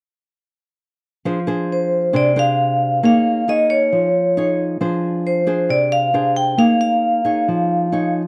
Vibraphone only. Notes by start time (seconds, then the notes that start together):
1.72 C5
2.16 D5
2.39 F5
3.05 F5
3.49 D#5
3.70 C#5
5.27 C5
5.70 D5
5.92 F5
6.36 G5
6.59 F5
6.81 F5